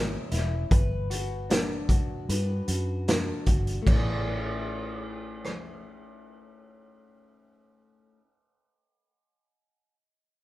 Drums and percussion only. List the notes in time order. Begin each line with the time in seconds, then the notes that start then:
0.32 snare, closed hi-hat
0.71 kick, closed hi-hat
1.11 closed hi-hat
1.50 snare, closed hi-hat
1.89 kick, closed hi-hat
2.30 closed hi-hat
2.68 closed hi-hat
3.08 snare, closed hi-hat
3.46 kick, closed hi-hat
3.67 closed hi-hat
3.87 kick, crash
5.45 cross-stick